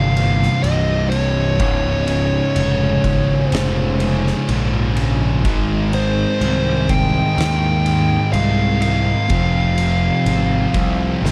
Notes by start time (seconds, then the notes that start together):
Already playing: G1 C2 G2 C3 F3 F5
0.16 C2 G2 C3, ride
0.43 snare
0.62 C1 C2 G2 C3 D#5, ride
1.10 C2 G2 C3 C#5, ride
1.59 C#1 C#2 G#2 C#3 G#3 D#4, kick, ride
2.08 C#2 G#2 C#3, ride
2.56 F1 C#2 G#2 C#3, ride
3.04 G#1 C#2 G#2 C#3, kick, ride
3.46 C5
3.52 F1 C#2 G#2 C#3 F4, snare, ride
4.00 C#2 G#2 C#3, ride
4.27 snare
4.49 A#1 C#2 G#2 C#3, ride
4.96 C#2 G#2 C#3, ride
5.44 G#1 G#2 D#3 G#3 D#4 A#4, kick, ride
5.92 G#2 D#3 G#3 C5, ride
6.41 C2 G#2 D#3 G#3, ride
6.89 G#2 D#3 G#3 G5, kick, ride
7.37 D#2 G#2 D#3 G#3, snare, ride
7.86 G#2 D#3 G#3, ride
8.33 C2 G#2 D#3 G#3 F5, ride
8.81 G#2 D#3 G#3 F5, ride
9.30 F1 F2 C3 F3 C4 G4, kick, ride
9.78 F2 C3 F3, ride
10.26 G#1 F2 C3 F3, ride
10.74 C2 F2 C3 F3, kick, ride
11.22 G#1 F2 C3 F3, snare